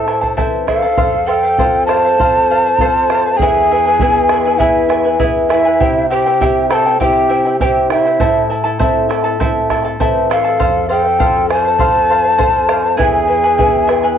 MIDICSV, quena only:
0, 0, Header, 1, 2, 480
1, 0, Start_track
1, 0, Tempo, 600601
1, 784, Time_signature, 4, 2, 24, 8
1, 11334, End_track
2, 0, Start_track
2, 0, Title_t, "Quena"
2, 0, Program_c, 0, 77
2, 0, Note_on_c, 0, 81, 86
2, 269, Note_off_c, 0, 81, 0
2, 541, Note_on_c, 0, 77, 97
2, 1018, Note_on_c, 0, 79, 111
2, 1030, Note_off_c, 0, 77, 0
2, 1484, Note_off_c, 0, 79, 0
2, 1489, Note_on_c, 0, 81, 127
2, 2693, Note_on_c, 0, 80, 127
2, 2705, Note_off_c, 0, 81, 0
2, 3663, Note_on_c, 0, 76, 98
2, 3675, Note_off_c, 0, 80, 0
2, 4173, Note_off_c, 0, 76, 0
2, 4389, Note_on_c, 0, 76, 106
2, 4841, Note_off_c, 0, 76, 0
2, 4873, Note_on_c, 0, 79, 103
2, 5322, Note_off_c, 0, 79, 0
2, 5350, Note_on_c, 0, 83, 102
2, 5381, Note_on_c, 0, 81, 111
2, 5389, Note_off_c, 0, 83, 0
2, 5576, Note_off_c, 0, 81, 0
2, 5602, Note_on_c, 0, 79, 119
2, 6047, Note_off_c, 0, 79, 0
2, 6080, Note_on_c, 0, 80, 80
2, 6106, Note_on_c, 0, 79, 87
2, 6114, Note_off_c, 0, 80, 0
2, 6301, Note_off_c, 0, 79, 0
2, 6326, Note_on_c, 0, 76, 97
2, 6769, Note_off_c, 0, 76, 0
2, 8255, Note_on_c, 0, 77, 105
2, 8690, Note_off_c, 0, 77, 0
2, 8718, Note_on_c, 0, 79, 108
2, 9162, Note_off_c, 0, 79, 0
2, 9194, Note_on_c, 0, 80, 127
2, 9282, Note_off_c, 0, 80, 0
2, 9282, Note_on_c, 0, 81, 127
2, 10356, Note_off_c, 0, 81, 0
2, 10383, Note_on_c, 0, 80, 120
2, 11334, Note_off_c, 0, 80, 0
2, 11334, End_track
0, 0, End_of_file